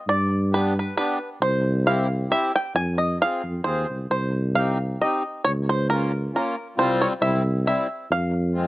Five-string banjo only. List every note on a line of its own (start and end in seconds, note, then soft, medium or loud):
0.09 0.54 D5 loud
0.54 0.78 B4 medium
0.79 0.96 B4 medium
0.97 1.29 B4 loud
1.42 1.87 C5 loud
1.87 2.31 F5 loud
2.32 2.53 E5 loud
2.56 2.75 G5 medium
2.76 3.00 G#5 loud
2.98 3.18 D#5 medium
3.22 3.67 F5 loud
3.64 3.97 C5 medium
4.11 4.58 C5 medium
4.55 5.01 F5 medium
5.01 5.44 D#5 medium
5.44 5.51 C#5 loud
5.69 5.89 C5 medium
5.90 6.35 A#4 medium
6.36 6.67 A#4 medium
6.79 7.00 C5 loud
7.01 7.07 C#5 medium
7.22 7.66 E5 medium
7.67 8.11 E5 medium
8.12 8.67 F5 medium